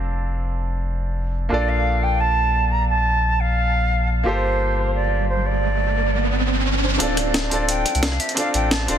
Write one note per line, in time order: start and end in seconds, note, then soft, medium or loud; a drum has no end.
0.00 1.50 F1 medium
0.00 1.31 C4 medium
0.00 1.32 D4 medium
0.00 1.32 F4 medium
0.00 1.33 A4 medium
0.00 1.34 D5 medium
1.49 4.24 A#1 medium
1.49 4.22 A#3 medium
1.49 4.23 D4 medium
1.49 4.23 F4 medium
1.49 4.24 A4 medium
1.49 1.70 D5 medium
1.54 4.25 D5 medium
1.68 2.04 F5 medium
2.03 2.21 G5 medium
2.20 2.73 A5 loud
2.71 2.88 A#5 loud
2.88 3.41 A5 loud
3.40 4.09 F5 loud
4.24 6.99 G1 medium
4.24 6.97 A#3 medium
4.24 6.98 F4 medium
4.24 6.98 G4 medium
4.24 6.99 A4 medium
4.24 4.90 C5 medium
4.24 riser medium
4.28 7.00 C5 medium
4.94 5.26 D5 medium
5.29 5.47 C5 medium
5.46 6.60 D5 medium
6.83 6.89 C5 medium
6.98 7.50 D1 medium
6.98 7.47 C4 medium
6.98 7.49 D4 medium
6.98 7.50 F4 medium
6.98 7.50 A4 medium
6.98 7.65 D5 medium
6.98 kick loud
6.98 closed hi-hat medium
7.03 7.51 D5 medium
7.17 kick medium
7.17 cross-stick soft
7.17 closed hi-hat medium
7.34 snare loud
7.34 closed hi-hat medium
7.49 7.85 D1 medium
7.49 8.33 C4 medium
7.49 8.34 D4 medium
7.49 8.35 F4 medium
7.49 8.36 A4 medium
7.49 closed hi-hat medium
7.54 8.37 D5 medium
7.68 8.04 G5 medium
7.68 closed hi-hat medium
7.86 kick loud
7.86 closed hi-hat medium
7.95 8.19 C2 medium
7.95 closed hi-hat soft
8.03 8.21 F5 medium
8.03 snare loud
8.03 closed hi-hat medium
8.12 cross-stick soft
8.20 8.36 E5 medium
8.20 closed hi-hat medium
8.29 closed hi-hat soft
8.34 8.84 C4 medium
8.34 8.85 D4 medium
8.34 8.87 F4 medium
8.34 8.87 A4 medium
8.34 8.53 F5 medium
8.34 kick loud
8.34 closed hi-hat medium
8.39 8.88 D5 medium
8.54 8.87 A1 medium
8.54 8.73 G5 loud
8.54 closed hi-hat medium
8.71 8.90 A5 loud
8.71 snare loud
8.71 closed hi-hat medium
8.86 8.98 D1 medium
8.86 8.98 C4 medium
8.86 8.98 D4 medium
8.86 8.98 F4 medium
8.86 8.98 A4 medium
8.86 8.98 C6 loud
8.86 closed hi-hat medium
8.91 8.98 D5 medium